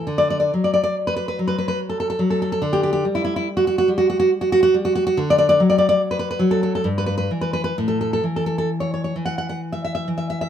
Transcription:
\new Staff \with { instrumentName = "Nylon-string guitar" } { \time 3/4 \key d \major \tempo 4 = 70 << { r32 d''32 d''32 d''32 r32 d''32 d''32 d''32 r32 b'32 b'32 b'32 r32 b'32 b'32 b'32 r32 a'32 a'32 a'32 r32 a'32 a'32 a'32 | r32 g'32 g'32 g'32 r32 e'32 e'32 e'32 r32 fis'32 fis'32 fis'32 r32 fis'32 fis'32 fis'32 r32 fis'32 fis'32 fis'32 r32 fis'32 fis'32 fis'32 | r32 d''32 d''32 d''32 r32 d''32 d''32 d''32 r32 b'32 b'32 b'32 r32 a'32 a'32 a'32 r32 b'32 b'32 b'32 r32 b'32 b'32 b'32 | r32 a'32 a'32 a'32 r32 a'32 a'32 a'32 r32 cis''32 cis''32 cis''32 r32 fis''32 fis''32 fis''32 r32 e''32 e''32 e''32 r32 e''32 e''32 e''32 | } \\ { d8 fis4 fis4 fis8 | d8 g4 g4 g8 | d8 fis4 fis8 g,8 e8 | a,8 e4 e4 e8 | } >> }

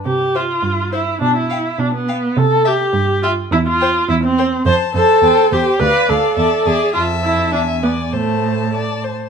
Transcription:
<<
  \new Staff \with { instrumentName = "Violin" } { \time 2/4 \key c \major \tempo 4 = 104 r8 e''8 r8 e''8 | r8 g''8 r8 g''8 | r8 g''8 r8 g''8 | r8 g''8 r8 g''8 |
\key a \minor a''8 a''8 g''8 g''8 | f''8 f''8 e''8 e''8 | a''4 gis''4 | a''4. r8 | }
  \new Staff \with { instrumentName = "Violin" } { \time 2/4 \key c \major r8 c''8 r8 c''8 | r8 f''8 r8 f''8 | r8 e''8 r8 e''8 | r8 c''8 r8 c''8 |
\key a \minor c''8 c''8 c''8 c''8 | d''8 d''8 d''8 d''8 | e''4 e''8 d''8 | c''4 d''8 c''8 | }
  \new Staff \with { instrumentName = "Viola" } { \time 2/4 \key c \major g'8 f'4 e'8 | d'16 e'8. d'16 b8. | a'8 g'4 f'8 | e'16 f'8. e'16 c'8. |
\key a \minor c''8 a'4 g'8 | b'8 a'4 gis'8 | f'8 e'8 d'8 b8 | a4 r4 | }
  \new Staff \with { instrumentName = "Cello" } { \clef bass \time 2/4 \key c \major c4 g,4 | b,4 b,4 | c4 g,4 | e,4 e,4 |
\key a \minor f,8 f,8 e,8 e,8 | d,8 d,8 e,8 e,8 | f,4 e,4 | a,4. r8 | }
>>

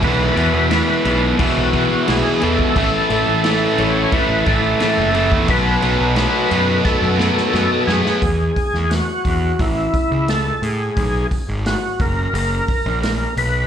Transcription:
<<
  \new Staff \with { instrumentName = "Tonewheel organ" } { \time 4/4 \key b \mixolydian \tempo 4 = 88 b'4 b'4 fis'4 gis'8 a'8~ | a'4. cis''8 b'8 a'4 r8 | b'4 b'4 a'4. gis'8~ | \key e \lydian gis'4 fis'4 e'4 a'8 gis'8~ |
gis'8 r8 fis'8 ais'8 ais'4 ais'8 b'8 | }
  \new Staff \with { instrumentName = "String machine" } { \time 4/4 \key b \mixolydian \tuplet 3/2 { <a c' eis' a'>8 <e b e' gis''>4~ } <e b e' gis''>2. | <a cis' e' a'>1 | <a b dis' fis'>1 | \key e \lydian r1 |
r1 | }
  \new Staff \with { instrumentName = "Distorted electric guitar" } { \clef bass \time 4/4 \key b \mixolydian <e, b, e>8 <e, b, e>8 <e, b, e>8 <e, b, e>8 <e, b, e>8 <e, b, e>8 <e, b, e>8 <e, b, e>8 | <a, e a>8 <a, e a>8 <a, e a>8 <a, e a>8 <a, e a>8 <a, e a>8 <a, e a>8 <a, e a>8 | <b, fis b>8 <b, fis b>8 <b, fis b>8 <b, fis b>8 <b, fis b>8 <b, fis b>8 <b, fis b>8 <b, fis b>8 | \key e \lydian r1 |
r1 | }
  \new Staff \with { instrumentName = "Overdriven electric guitar" } { \clef bass \time 4/4 \key b \mixolydian <e, b, e>8 <e, b, e>8 <e, b, e>8 <e, b, e>8 <e, b, e>8 <e, b, e>8 <e, b, e>8 <e, b, e>8 | <a, e a>8 <a, e a>8 <a, e a>8 <a, e a>8 <a, e a>8 <a, e a>8 <a, e a>8 <a, e a>8 | <b, fis b>8 <b, fis b>8 <b, fis b>8 <b, fis b>8 <b, fis b>8 <b, fis b>8 <b, fis b>8 <b, fis b>8 | \key e \lydian r1 |
r1 | }
  \new Staff \with { instrumentName = "Picked electric bass" } { \clef bass \time 4/4 \key b \mixolydian b,,8 e,16 e,8 r16 b,,8 r16 b,,8 r16 b,,16 r16 e,16 r16 | a,,16 r16 a,,16 a,,8. a,,8 r16 a,,16 a,,8 r16 fis,,8 e,16 | b,,8 b,,16 b,,8 r16 fis,8 r16 fis,8 r16 fis,16 r16 fis,16 r16 | \key e \lydian e,8 r16 e,8 r16 e,8 a,,8 r16 cis,8. a,8 |
b,,8 r16 gis,,8 r16 fis,,8 fis,,8 r16 ais,,8. b,,8 | }
  \new DrumStaff \with { instrumentName = "Drums" } \drummode { \time 4/4 <cymc bd>8 cymc8 <cymc sn>8 cymc8 <cymc bd>8 <cymc bd>8 <cymc sn>8 cymc16 bd16 | <cymc bd>8 cymc8 <cymc sn>8 cymc8 <cymc bd>8 <cymc bd>8 <cymc sn>8 cymc16 bd16 | <cymc bd>8 cymc8 <cymc sn>8 cymc8 <bd sn>8 sn16 sn16 sn8 sn16 sn16 | <hho bd>8 <hho bd>16 sn16 <hho sn>8 <hho bd>8 <hho bd>8 <hho bd>8 <hho sn>8 hho8 |
<hho bd>8 <hho bd>8 <hho sn>8 <hho bd>8 hho8 <hho bd>8 <hho sn>8 hho8 | }
>>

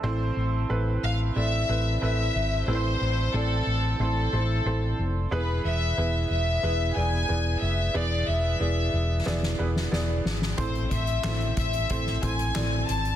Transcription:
<<
  \new Staff \with { instrumentName = "Violin section" } { \time 4/4 \key a \minor \tempo 4 = 91 r4. f''8 e''4 e''4 | c''4 a'4 a'4. r8 | b'8 e''4 e''4 gis''4 e''8 | d''8 e''4. r2 |
c''8 e''4 e''4 gis''4 a''8 | }
  \new Staff \with { instrumentName = "Upright piano" } { \time 4/4 \key a \minor << { a''16 r2. r8. | r1 | r1 | r1 |
r1 | } \\ { <c' e' a' c''>4 <c' e' a' b'>4 <c' e' a' d''>8 <c' e' a' b'>8 <c' e' a' b'>4 | <c' e' a' b' c''>4 <c' e' a' d''>4 <c' e' a' c''>8 <c' e' a' c''>8 <c' e' a' c''>4 | <b e' gis' b'>4 <b e' gis' b'>4 <b e' gis' b'>8 <b e' gis' d''>8 <b e' gis' d''>4 | <b e' gis' d''>4 <b e' gis' d''>4 <b e' gis' d''>8 <b e' gis' b'>8 <b e' gis' d''>4 |
<c' e' a' c''>4 <c' e' a' c''>4 <c' e' a' c''>8 <c' e' a' c''>8 <c' e' a' d''>4 | } >> }
  \new Staff \with { instrumentName = "Upright piano" } { \clef bass \time 4/4 \key a \minor a,4. r2 r8 | a,4. r2 r8 | e4. r2 r8 | e4. r2 r8 |
a,4. r2 r8 | }
  \new Staff \with { instrumentName = "Fingered electric bass" } { \clef bass \time 4/4 \key a \minor a,,8 a,,8 a,,8 a,,8 a,,8 a,,8 a,,8 gis,,8 | a,,8 a,,8 a,,8 a,,8 a,,8 a,,8 a,,8 f,,8 | e,,8 e,,8 e,,8 e,,8 e,,8 e,,8 e,,8 f,,8 | e,,8 e,,8 e,,8 e,,8 e,,8 e,,8 e,,8 gis,,8 |
a,,8 a,,8 a,,8 a,,8 a,,8 a,,8 a,,8 gis,,8 | }
  \new DrumStaff \with { instrumentName = "Drums" } \drummode { \time 4/4 r4 r4 r4 r4 | r4 r4 r4 r4 | r4 r4 r4 r4 | r4 r4 sn16 sn8 sn16 sn8 sn16 sn16 |
<hh bd>16 hh16 <hh bd>16 hh16 <hc hh sn>16 hh16 <hh bd>16 hh16 <hh bd>16 sn16 <hh bd>16 hh16 <hc hh sn>8 hh16 hh16 | }
>>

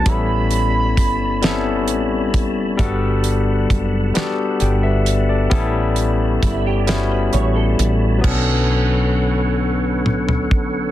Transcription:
<<
  \new Staff \with { instrumentName = "Soft synth lead" } { \time 6/8 \key b \minor \tempo 4. = 44 b''2~ b''8 r8 | r2. | r2. | r2. | }
  \new Staff \with { instrumentName = "Tonewheel organ" } { \time 6/8 \key b \minor << { <g b''>2.~ | <g b''>2.~ | <g b''>2. | <d a' b' cis'' fis''>2. | } \\ { <cis'' a''>2. | <fis'' a''>2. | <cis'' a''>2. | r2. | } >> }
  \new Staff \with { instrumentName = "Clean electric guitar" } { \time 6/8 \key b \minor r2. | r2. | r4 e'16 g'16 a'16 b'16 cis''16 a'8. | r2. | }
  \new Staff \with { instrumentName = "Tine electric piano" } { \time 6/8 \key b \minor << { r2. | r2 <d'' g''>16 <b' e''>8 <a' d''>16~ | <a' d''>16 r2 r8. | r2. | } \\ { <g b cis' e' a'>4. <g b c' cis' e' a'>4. | <g a b d' fis' a'>4. <g b d' fis' g' a'>4. | <g b cis' e' a'>4. <g b cis' e' fis'>4. | <fis b cis' d' a'>2. | } >> }
  \new Staff \with { instrumentName = "Fretless electric bass" } { \clef bass \time 6/8 \key b \minor a,,4 g,,4 a,,8 fis,,8 | g,,4 fis,,8 r8 g,,4 | a,,4 g,,4 a,,8 a,,8 | b,,2. | }
  \new DrumStaff \with { instrumentName = "Drums" } \drummode { \time 6/8 <hh bd>8 hh8 <hh bd>8 <hh sn>8 hh8 <hh bd>8 | <hh bd>8 hh8 <hh bd>8 <hh sn>8 hh8 hh8 | <hh bd>8 hh8 <hh bd>8 <hh sn>8 hh8 hh8 | <cymc bd>4. r8 toml16 tomfh16 bd8 | }
>>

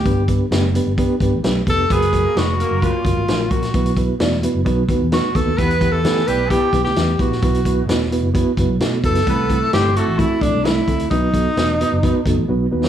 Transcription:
<<
  \new Staff \with { instrumentName = "Tenor saxophone" } { \time 4/4 \key b \phrygian \tempo 4 = 130 g'8 r2. a'8 | gis'4 fis'4 f'4. fis'8~ | fis'8 r2 r8 fis'8 a'8 | b'8. a'8. b'8 g'8. g'8. fis'8~ |
fis'4 r2 r8 a'8~ | a'4 g'8 fis'8 e'8 d'8 e'4 | dis'2. r4 | }
  \new Staff \with { instrumentName = "Reed electric piano" } { \time 4/4 \key b \phrygian <b d' g' b'>8 <b d' g' b'>8 <b d' g' b'>8 <b d' g' b'>8 <b d' g' b'>8 <b d' g' b'>8 <b d' g' b'>8 <b d' g' b'>8 | <ais cis' fis' ais'>8 <ais cis' fis' ais'>8 <ais cis' fis' gis'>8 <ais cis' fis' ais'>8 <ais cis' fis' ais'>8 <ais cis' fis' ais'>8 <ais cis' fis' ais'>8 <ais cis' fis' ais'>8 | <b e' fis' b'>8 <b e' fis' b'>8 <b e' fis' d''>8 <b e' fis' b'>8 <b dis' fis' b'>8 <b dis' fis' b'>8 <b dis' fis' b'>8 <b dis' fis' b'>8 | <b e' g' b'>8 <b e' g' b'>8 <b e' g' a'>8 <b e' g' b'>8 <b e' g' b'>8 <b e' g' b'>8 <b e' g' b'>8 <b e' g' b'>8 |
<b e' fis' b'>8 <b e' fis' b'>8 <b e' fis' b'>8 <b e' fis' b'>8 <b e' fis' b'>8 <b e' fis' b'>8 <b e' fis' a'>8 <b e' fis' b'>8 | <a c' e' a'>8 <a c' e' a'>8 <a c' e' a'>8 <a c' e' a'>8 <a c' e' fis'>8 <a c' e' a'>8 <a c' e' a'>8 <a c' e' a'>8 | <b dis' fis' b'>8 <b dis' fis' a'>8 <b dis' fis' b'>8 <b dis' fis' b'>8 <b dis' fis' b'>8 <b dis' fis' a'>8 <b dis' fis' b'>8 <b dis' fis' b'>8 | }
  \new Staff \with { instrumentName = "Reed electric piano" } { \clef bass \time 4/4 \key b \phrygian g,4. r2 r8 | r1 | b,4. r8 b,4. r8 | e4. r2 r8 |
b,4. r2 r8 | c4. r2 r8 | b,4. r2 r8 | }
  \new Staff \with { instrumentName = "Horn section" } { \time 4/4 \key b \phrygian r1 | <b b'>8. <ais ais'>16 <b b'>8 <ais ais'>4 r4. | r1 | <b b'>8. <a a'>16 <b b'>8 <g g'>4 r4. |
r1 | <b b'>8. <a a'>16 <c' c''>8 <a a'>4 r4. | r1 | }
  \new Staff \with { instrumentName = "Fingered electric bass" } { \clef bass \time 4/4 \key b \phrygian g,,4 fis,,8. g,,8 r16 g,,16 a,,16 b,,8 f,,8 | fis,,4 f,,8. fis,,8 r16 fis,,16 gis,,16 ais,,8 ais,,8 | b,,4 e,,8. fis,,16 b,,8 dis,16 e,8 r16 dis,16 dis,16 | e,4 e8 b,,8. r16 b,,16 d,16 e,8 ais,,8 |
b,,4 e,,8. fis,,8 r16 fis,,16 b,,16 b,8 fis,,8 | c,4 g,,8. a,,8 r16 a,,16 c,8. d,8 | b,,4 e,,8. fis,,8 r16 fis,,16 a,,16 b,,8 dis,8 | }
  \new DrumStaff \with { instrumentName = "Drums" } \drummode { \time 4/4 <hh bd>8 <hh bd>8 <hh sn>8 hh8 <hh bd>8 <hh bd>8 <hh sn>8 <hh bd>8 | <hh bd>16 hh16 <hh bd>8 <hh sn>8 hh8 <hh bd>8 <hh bd>8 <hh sn>8 <hh bd>16 <hh sn>16 | <hh bd>16 hh16 <hh bd>8 <hh sn>16 sn16 hh8 <hh bd>8 <hh bd>8 <hh sn>8 <hh bd>8 | <hh bd>16 hh16 <hh bd>8 <hh sn>16 sn16 hh8 <hh bd>8 <hh bd>16 sn16 <hh sn>8 <hh bd>16 sn16 |
<hh bd>16 hh16 <hh bd>8 <hh sn>16 sn16 hh8 <hh bd>8 <hh bd>8 <hh sn>8 <hh bd>16 <hh sn>16 | <hh bd>8 <hh bd>8 <hh sn>8 hh8 <hh bd>8 <hh bd>8 <hh sn>8 <hh bd>16 hh16 | <hh bd>8 <hh bd>8 <hh sn>8 hh8 <hh bd>8 <hh bd>8 r8. sn16 | }
>>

